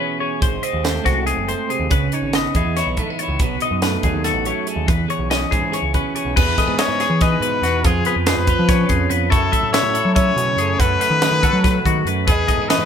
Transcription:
Already playing: E2 E3 G#4
0.00 B2 C#4 B4
0.20 G#4 C#5
0.40 G#1 G#2 C5, kick, closed hi-hat
0.63 C4 D#5, closed hi-hat
0.73 D#2
0.84 A3 C5, snare, closed hi-hat
1.04 C2 G#3 C4 F#4, kick, snare, closed hi-hat
1.15 C2
1.27 G#2 G#4, closed hi-hat
1.37 F#1
1.48 A2 C5, closed hi-hat
1.69 C3 G#4, closed hi-hat
1.80 D#2
1.90 C#2 C#3 B4, kick, closed hi-hat
2.12 D#4 C#5, closed hi-hat
2.22 G#1
2.33 B3 D#5, snare, closed hi-hat
2.55 E2 E3 D#4 G#4, kick, closed hi-hat
2.65 E2
2.77 E4 C#5, snare, closed hi-hat
2.86 B1
2.97 G#2 A3 B4, kick, closed hi-hat
3.10 B3
3.19 E4 C#5, closed hi-hat
3.28 C#2
3.39 B1 B2 B4, kick, closed hi-hat
3.60 D#5, closed hi-hat
3.65 D#4
3.71 F#2
3.82 A3 B4, snare, closed hi-hat
4.03 D#2 F#3 D#4 G#4, kick, closed hi-hat
4.13 D#2
4.24 F#4 A4, snare, closed hi-hat
4.33 A1
4.45 F#2 A3 C#5, closed hi-hat
4.67 G#4 A4, closed hi-hat
4.76 D#2
4.86 E2 B4, kick, closed hi-hat
5.08 G#4 C#5, closed hi-hat
5.19 B1
5.30 C#4 D#5, snare, closed hi-hat
5.51 G#2 E3 G#4, kick, closed hi-hat
5.62 G#2
5.72 G#4 C#5, closed hi-hat
5.83 C#2
5.93 B2 C#4 B4, kick, closed hi-hat
6.15 G#4 C#5, closed hi-hat
6.25 B1
6.36 E2 G#4 B4, kick, crash
6.58 A3 D#5, kick, snare, closed hi-hat
6.67 G#2 B3
6.78 E3 C#5 D#5, snare, closed hi-hat
6.88 G#2
7.00 G#4, snare, closed hi-hat
7.10 E3
7.21 D#4 B4 D#5, kick, snare, closed hi-hat
7.40 G#2 B2 B4, closed hi-hat
7.62 E2 B3 F#4, snare, closed hi-hat
7.84 F2 F4 G#4, kick, closed hi-hat
8.05 B3 G#4 B4, closed hi-hat
8.16 F2
8.26 F3 G#4 B4, snare, closed hi-hat
8.37 F2
8.47 F4 B4, kick, closed hi-hat
8.59 F3
8.69 C#4 C#5, kick, snare, closed hi-hat
8.87 F2 G#4, kick, closed hi-hat
9.10 F2 B3 B4, closed hi-hat
9.29 F#2 E4 A4 C#5, kick, closed hi-hat
9.51 A3 E5, kick, closed hi-hat
9.63 A2
9.73 F#3 C#5 E5, snare, closed hi-hat
9.83 A2
9.94 E4 A4, closed hi-hat
10.05 F#3
10.15 C#4 C#5 E5, kick, closed hi-hat
10.36 B2 C#3 C#5, closed hi-hat
10.56 F#2 A3 G#4, closed hi-hat
10.79 F#2 F#4 A4 B4, kick, closed hi-hat
11.01 A3 B4, snare, closed hi-hat
11.10 D#3
11.22 F#3 G#4, snare, closed hi-hat
11.31 D#3
11.43 F#4 A4, kick, closed hi-hat
11.53 F#3
11.64 A2 B4, kick, snare, closed hi-hat
11.85 G#2 D#3 F#4, kick, closed hi-hat
12.05 F#2 B4, closed hi-hat
12.27 E2 E3 B3 G#4 B4, kick, closed hi-hat
12.32 D#4
12.48 A3 D#5, kick, closed hi-hat
12.57 G#2
12.62 B3
12.69 E3 B4 D#5, snare, closed hi-hat
12.79 G#2

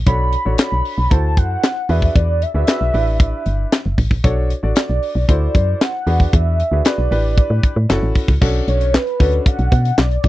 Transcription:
0.06 B1 D4 F#4 A4 C#5 B5, kick, closed hi-hat
0.33 closed hi-hat
0.45 A1 D4 F#4 A4 C#5
0.58 B5, snare, clap, closed hi-hat
0.72 B1
0.85 open hi-hat
0.98 B1
1.10 D2 E4 F#4 A4 C5 A5, kick, closed hi-hat
1.37 F#2 F#5, kick, closed hi-hat
1.63 snare, clap, closed hi-hat
1.89 E2 D4 F#4 G#4 B4 E5, open hi-hat
2.02 kick
2.15 E2 D5, kick, closed hi-hat
2.42 E5, closed hi-hat
2.54 D2 D4 F#4 G#4 B4 E5
2.67 D4 F#4 G#4 B4, snare, clap, closed hi-hat
2.81 B1
2.93 A1 D4 E4 G4 B4, open hi-hat
3.20 kick, closed hi-hat
3.46 G1, closed hi-hat
3.72 snare, clap, closed hi-hat
3.86 F#1
3.98 A1, kick, open hi-hat
4.11 A#1, kick
4.24 B1 D4 F#4 A4 C#5, kick, closed hi-hat
4.50 closed hi-hat
4.63 A1 D4 F#4 A4 D5
4.76 D5, snare, clap, closed hi-hat
4.90 B1
5.03 open hi-hat
5.15 B1
5.28 D2 E4 F#4 A4 C5 D5, kick, closed hi-hat
5.55 F#2, kick, closed hi-hat
5.81 F#5, snare, clap, closed hi-hat
6.07 E2 D4 F#4 G#4 B4, open hi-hat
6.20 kick
6.33 E2 E5, kick, closed hi-hat
6.60 closed hi-hat
6.72 D2 D4 F#4 G#4 B4
6.85 D4 F#4 G#4 B4 D5, snare, clap, closed hi-hat
6.98 B1
7.11 A1 D4 E4 G4 B4, open hi-hat
7.38 kick, closed hi-hat
7.50 A2
7.63 kick, closed hi-hat
7.76 A2
7.89 F#1 C#4 E4 F#4 A4, snare, clap, closed hi-hat
8.03 A1
8.15 kick, open hi-hat
8.28 C#2, kick
8.41 B1 C#4 D4 F#4 A4, kick, crash
8.55 closed hi-hat
8.68 B1 C#5, closed hi-hat
8.81 closed hi-hat
8.94 B4, snare, clap
9.07 closed hi-hat
9.19 D2 C#4 D4 F#4 A4, kick, open hi-hat
9.33 closed hi-hat
9.46 F#5, kick, closed hi-hat
9.59 B1, closed hi-hat
9.72 B2, kick, closed hi-hat
9.85 closed hi-hat
9.98 B1 D5, snare, clap
10.11 closed hi-hat
10.24 C#2, kick, open hi-hat

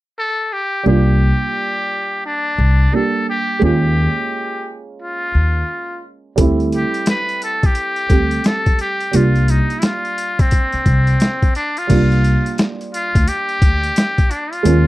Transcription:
0.19 A4
0.53 G4
0.84 C2 G3 A#3 D4
0.88 F4 G4
2.26 D4
2.58 C2
2.92 G3 A#3 D4 G4 A4
3.29 G4
3.59 D#2 G#3 A#3 C#4
3.64 F4 G4
5.02 F4
5.35 D#2
6.36 D2 G3 A3 C4, kick, closed hi-hat
6.40 E4
6.60 closed hi-hat
6.72 G4, closed hi-hat
6.94 closed hi-hat
7.06 B4, snare, closed hi-hat
7.29 closed hi-hat
7.42 A4, closed hi-hat
7.63 G4, kick, closed hi-hat
7.75 closed hi-hat
7.96 closed hi-hat
8.09 D2 G3 A3 C4 G4, kick, closed hi-hat
8.31 closed hi-hat
8.44 A4, snare, closed hi-hat
8.66 kick, closed hi-hat
8.79 G4, closed hi-hat
9.00 closed hi-hat
9.11 C2 G3 A#3 D4, closed hi-hat
9.16 F4
9.36 closed hi-hat
9.48 D#4, closed hi-hat
9.70 closed hi-hat
9.79 E4, closed hi-hat
9.83 F4, snare
10.05 closed hi-hat
10.18 closed hi-hat
10.39 C4, kick, closed hi-hat
10.51 kick, closed hi-hat
10.73 muted upright bass stroke, closed hi-hat
10.86 C2, kick, closed hi-hat
11.07 closed hi-hat
11.20 snare, closed hi-hat
11.42 kick, closed hi-hat
11.55 D4, closed hi-hat
11.77 F4, closed hi-hat
11.87 C2 G3 A#3 D4, kick, closed hi-hat, crash
11.92 F4
12.12 closed hi-hat
12.24 closed hi-hat
12.46 closed hi-hat
12.58 snare, closed hi-hat
12.81 closed hi-hat
12.94 F4, closed hi-hat
13.15 D2, kick, closed hi-hat
13.28 G4, closed hi-hat
13.49 closed hi-hat
13.62 D2, kick, closed hi-hat
13.84 closed hi-hat
13.96 snare, closed hi-hat
14.18 kick, closed hi-hat
14.31 D4, closed hi-hat
14.53 F4, closed hi-hat
14.63 D#2 G#3 A#3 C#4, closed hi-hat
14.67 F4

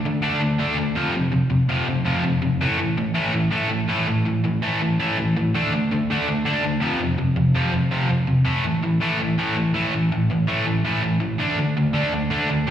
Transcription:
0.05 D3 A3
0.22 D3 A3 D4
0.40 D3 A3
0.59 D3 A3 D4
0.78 D3 A3
0.96 F2 C3 F3
1.15 F2 C3
1.32 F2 C3
1.50 F2 C3
1.69 F2 C3 F3
1.88 F2 C3
2.05 F2 C3 F3
2.23 F2 C3
2.42 F2 C3
2.61 A2 E3 A3
2.79 A2 E3
2.98 A2 E3
3.14 A2 E3 A3
3.33 A2 E3
3.51 A2 E3 A3
3.70 A2 E3
3.89 A2 E3 A3
4.08 A2 E3
4.26 A2 E3
4.45 A2 E3
4.63 A2 E3 A3
4.82 A2 E3
5.00 A2 E3 A3
5.18 A2 E3
5.37 A2 E3
5.55 D3 A3 D4
5.73 D3 A3
5.92 D3 A3
6.11 D3 A3 D4
6.29 D3 A3
6.46 D3 A3 D4
6.63 D3 A3
6.81 F2 C3 F3
7.00 F2 C3
7.18 F2 C3
7.36 F2 C3
7.55 F2 C3 F3
7.72 F2 C3
7.91 F2 C3 F3
8.09 F2 C3
8.27 F2 C3
8.45 A2 E3 A3
8.64 A2 E3
8.83 A2 E3
9.00 A2 E3 A3
9.20 A2 E3
9.38 A2 E3 A3
9.57 A2 E3
9.74 A2 E3 A3
9.93 A2 E3
10.12 A2 E3
10.30 A2 E3
10.47 A2 E3 A3
10.66 A2 E3
10.84 A2 E3 A3
11.03 A2 E3
11.20 A2 E3
11.39 D3 A3 D4
11.58 D3 A3
11.77 D3 A3
11.94 D3 A3 D4
12.13 D3 A3
12.30 D3 A3 D4
12.50 D3 A3
12.67 F2 C3

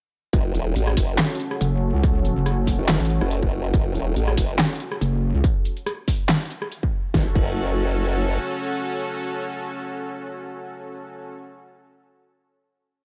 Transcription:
0.33 F#1 C#4 F#4 A4, kick, closed hi-hat
0.55 E1, closed hi-hat
0.76 A1, closed hi-hat
0.87 cross-stick
0.97 F#1, kick, open hi-hat
1.18 snare, clap, closed hi-hat
1.30 closed hi-hat
1.35 closed hi-hat
1.40 closed hi-hat
1.51 cross-stick
1.61 F#1, closed hi-hat
1.94 C#2
2.03 kick, closed hi-hat
2.25 closed hi-hat
2.36 F#1
2.46 cross-stick, closed hi-hat
2.67 kick, open hi-hat
2.79 F#1
2.89 snare, clap, closed hi-hat
3.00 A1, closed hi-hat
3.05 closed hi-hat
3.10 closed hi-hat
3.21 F#1, cross-stick
3.31 closed hi-hat
3.43 F#1, kick
3.74 F#1, kick, closed hi-hat
3.95 E1, closed hi-hat
4.16 A1, closed hi-hat
4.28 cross-stick
4.37 F#1, kick, open hi-hat
4.59 snare, clap, closed hi-hat
4.70 closed hi-hat
4.75 closed hi-hat
4.80 closed hi-hat
4.92 cross-stick
5.01 F#1, closed hi-hat
5.34 C#2
5.44 kick, closed hi-hat
5.65 closed hi-hat
5.77 closed hi-hat
5.86 cross-stick, closed hi-hat
6.08 kick, open hi-hat
6.29 snare, clap, closed hi-hat
6.41 closed hi-hat
6.45 closed hi-hat
6.50 closed hi-hat
6.62 cross-stick
6.72 closed hi-hat
6.83 kick
7.14 F#1 C#4 F#4 A4, kick, snare
7.35 F#1, kick, crash

